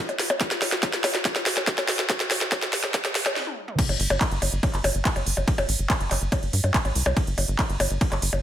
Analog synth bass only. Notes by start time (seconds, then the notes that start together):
3.89 G1
4.00 G1
4.10 G1
4.31 G1
4.42 G1
4.53 G1
4.74 G1
4.84 G1
4.95 G1
5.16 G1
5.26 G1
5.37 G1
5.58 G1
5.69 A1
5.79 G1
6.00 G1
6.11 G1
6.22 G1
6.43 G1
6.53 G2
6.64 G2
6.85 A1
6.95 C2
7.06 C2
7.27 G1
7.38 G1
7.48 G1
7.69 G1
7.80 G1
7.91 G1
8.12 G1
8.22 G1
8.33 G1